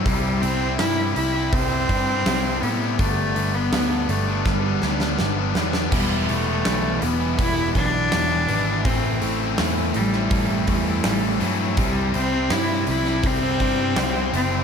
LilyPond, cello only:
\new Staff \with { instrumentName = "Cello" } { \time 4/4 \key c \major \tempo 4 = 82 g8 c'8 e'8 e'8 c'4. b8 | a8. b8. a8 g4 r4 | g8 a4 b8 e'8 d'4. | c'4 r8 g4. g8 fis8 |
g8 c'8 e'8 e'8 c'4. c'8 | }